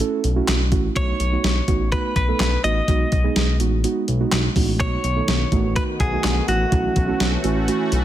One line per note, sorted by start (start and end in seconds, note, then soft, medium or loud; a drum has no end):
0.00 0.20 A3 medium
0.00 0.20 C#4 medium
0.00 0.20 E4 medium
0.00 0.20 A4 loud
0.00 closed hi-hat medium
0.24 0.41 B1 loud
0.24 closed hi-hat medium
0.36 0.56 A3 medium
0.36 0.56 C#4 medium
0.36 0.56 E4 medium
0.36 0.56 F#4 loud
0.48 0.73 B1 medium
0.48 snare loud
0.48 clap medium
0.48 closed hi-hat medium
0.72 0.89 A1 loud
0.72 0.86 A3 medium
0.72 0.86 C#4 medium
0.72 0.86 E4 medium
0.72 0.86 F#4 loud
0.72 kick loud
0.72 closed hi-hat medium
0.96 1.13 B1 loud
0.96 1.16 A3 medium
0.96 1.16 B3 medium
0.96 1.16 D#4 medium
0.96 1.16 F#4 medium
0.96 1.92 C#5 medium
0.96 kick loud
0.96 closed hi-hat medium
1.20 1.37 B1 loud
1.20 closed hi-hat medium
1.32 1.52 A3 medium
1.32 1.52 B3 medium
1.32 1.52 D#4 medium
1.32 1.52 F#4 medium
1.44 1.61 B1 loud
1.44 snare loud
1.44 closed hi-hat medium
1.68 1.93 A1 medium
1.68 1.82 A3 medium
1.68 1.82 B3 medium
1.68 1.82 D#4 medium
1.68 1.82 F#4 loud
1.68 kick medium
1.68 closed hi-hat medium
1.92 2.12 A3 medium
1.92 2.12 B3 medium
1.92 2.12 D#4 medium
1.92 2.12 F#4 medium
1.92 2.14 B4 medium
1.92 kick medium
1.92 closed hi-hat medium
2.16 2.33 B1 loud
2.16 2.64 B4 medium
2.16 kick medium
2.16 closed hi-hat medium
2.28 2.48 A3 medium
2.28 2.48 B3 medium
2.28 2.48 D#4 medium
2.28 2.48 A4 medium
2.40 2.57 B1 loud
2.40 snare loud
2.40 clap loud
2.40 closed hi-hat medium
2.64 2.81 A1 medium
2.64 2.78 A3 medium
2.64 2.78 B3 medium
2.64 2.78 D#4 medium
2.64 2.78 F#4 medium
2.64 3.56 D#5 loud
2.64 closed hi-hat medium
2.88 3.05 B1 loud
2.88 3.08 G#3 medium
2.88 3.08 B3 medium
2.88 3.08 D#4 medium
2.88 3.08 F#4 medium
2.88 kick loud
2.88 closed hi-hat medium
3.12 3.29 B1 loud
3.12 kick medium
3.12 closed hi-hat medium
3.24 3.44 G#3 medium
3.24 3.44 B3 medium
3.24 3.44 D#4 medium
3.24 3.44 G#4 loud
3.36 3.62 B1 loud
3.36 snare loud
3.36 closed hi-hat medium
3.60 3.85 A1 loud
3.60 3.74 G#3 medium
3.60 3.74 B3 medium
3.60 3.74 D#4 medium
3.60 3.74 F#4 loud
3.60 closed hi-hat medium
3.84 4.04 G#3 medium
3.84 4.04 B3 medium
3.84 4.04 D#4 medium
3.84 4.04 F#4 loud
3.84 closed hi-hat medium
4.08 4.25 B1 loud
4.08 closed hi-hat medium
4.20 4.40 G#3 medium
4.20 4.40 B3 medium
4.20 4.40 D#4 medium
4.20 4.40 F#4 loud
4.32 4.49 B1 medium
4.32 snare loud
4.32 clap loud
4.32 closed hi-hat medium
4.56 4.82 A1 medium
4.56 4.70 G#3 medium
4.56 4.70 B3 medium
4.56 4.70 D#4 medium
4.56 4.70 F#4 loud
4.56 kick loud
4.56 open hi-hat medium
4.80 4.97 B1 loud
4.80 6.70 D#3 medium
4.80 8.04 A3 medium
4.80 5.00 A3 medium
4.80 6.70 B3 medium
4.80 5.00 B3 medium
4.80 5.00 D#4 medium
4.80 8.04 F#4 medium
4.80 5.00 F#4 medium
4.80 5.76 C#5 loud
4.80 kick loud
4.80 closed hi-hat medium
5.04 5.21 B1 loud
5.04 closed hi-hat medium
5.16 5.36 A3 medium
5.16 5.36 B3 medium
5.16 5.36 D#4 medium
5.16 5.36 A4 medium
5.28 5.45 B1 loud
5.28 snare loud
5.28 closed hi-hat medium
5.52 5.77 A1 loud
5.52 5.66 A3 medium
5.52 5.66 B3 medium
5.52 5.66 D#4 medium
5.52 5.66 F#4 loud
5.52 kick medium
5.52 closed hi-hat medium
5.76 5.96 A3 medium
5.76 5.96 B3 medium
5.76 5.96 D#4 medium
5.76 5.96 F#4 medium
5.76 5.83 B4 loud
5.76 kick medium
5.76 closed hi-hat medium
6.00 6.17 B1 loud
6.00 6.48 G#4 medium
6.00 kick medium
6.00 closed hi-hat medium
6.12 6.32 A3 medium
6.12 6.32 B3 medium
6.12 6.32 D#4 medium
6.12 6.32 F#4 medium
6.24 6.41 B1 medium
6.24 snare loud
6.24 clap loud
6.24 closed hi-hat medium
6.48 6.65 A1 medium
6.48 6.62 A3 medium
6.48 6.62 B3 medium
6.48 6.62 D#4 medium
6.48 6.62 F#4 medium
6.48 7.40 F#4 medium
6.48 closed hi-hat medium
6.72 6.89 B1 loud
6.72 8.04 E3 medium
6.72 6.92 A3 medium
6.72 8.04 C#4 medium
6.72 6.92 C#4 medium
6.72 6.92 E4 medium
6.72 6.92 F#4 medium
6.72 kick loud
6.72 closed hi-hat medium
6.96 7.13 B1 loud
6.96 kick loud
6.96 closed hi-hat medium
7.08 7.28 A3 medium
7.08 7.28 C#4 medium
7.08 7.28 E4 medium
7.08 7.28 F#4 loud
7.20 7.37 B1 loud
7.20 snare loud
7.20 closed hi-hat medium
7.44 7.69 A1 loud
7.44 7.58 A3 medium
7.44 7.58 C#4 medium
7.44 7.58 E4 medium
7.44 7.58 F#4 medium
7.44 closed hi-hat medium
7.68 7.88 A3 medium
7.68 7.88 C#4 medium
7.68 7.88 E4 medium
7.68 7.88 F#4 loud
7.68 closed hi-hat medium
7.92 8.04 B1 loud
7.92 closed hi-hat medium